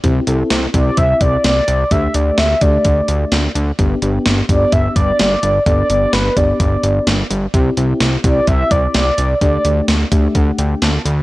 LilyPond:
<<
  \new Staff \with { instrumentName = "Soft synth lead" } { \time 4/4 \key g \major \tempo 4 = 128 r4. d''8 e''8 d''8 d''4 | e''8 d''8 e''8 d''2 r8 | r4. d''8 e''8 d''8 d''4 | d''8 d''8 b'8 d''2 r8 |
r4. d''8 e''8 d''8 d''4 | d''4 r2. | }
  \new Staff \with { instrumentName = "FM electric piano" } { \time 4/4 \key g \major << { r1 | r1 | r1 | r1 |
r1 | r4. e''8 fis''8 g''8 a''8 b''8 | } \\ { <c' e' g'>8 <c' e' a'>4 <c' e' g'>4. r4 | <a d' g'>8 <a d' g'>4 <a d' g'>4. r4 | <b d' g'>8 <b d' g'>4 <b d' g'>4. r4 | <b d' a'>8 <b d' g'>4 <b d' g'>4. r4 |
<c' e' g'>8 <c' e' g'>4 <c' e' g'>4. r4 | <a d' g'>8 <a d' g'>4 <a d' g'>4. r4 | } >> }
  \new Staff \with { instrumentName = "Analog synth bass" } { \clef bass \time 4/4 \key g \major c,8 c,8 c,8 c,8 c,8 c,8 c,8 c,8 | d,8 d,8 d,8 d,8 d,8 d,8 d,8 d,8 | g,,8 g,,8 g,,8 g,,8 g,,8 g,,8 g,,8 g,,8 | g,,8 g,,8 g,,8 g,,8 g,,8 g,,8 g,,8 g,,8 |
c,8 c,8 c,8 c,8 c,8 c,8 c,8 c,8 | d,8 d,8 d,8 d,8 d,8 d,8 d,8 d,8 | }
  \new DrumStaff \with { instrumentName = "Drums" } \drummode { \time 4/4 <hh bd>8 hh8 <hh sn>8 <hh bd>8 <hh bd>8 <hh bd>8 <hh sn>8 hh8 | <hh bd>8 hh8 <hh sn>8 <hh bd>8 <hh bd>8 hh8 <hh sn>8 hh8 | <hh bd>8 hh8 <hh sn>8 <hh bd>8 <hh bd>8 <hh bd>8 <hh sn>8 hh8 | <hh bd>8 hh8 <hh sn>8 <hh bd>8 <hh bd>8 hh8 <hh sn>8 hh8 |
<hh bd>8 hh8 <hh sn>8 <hh bd>8 <hh bd>8 <hh bd>8 <hh sn>8 hh8 | <hh bd>8 hh8 <hh sn>8 <hh bd>8 <hh bd>8 hh8 <hh sn>8 hh8 | }
>>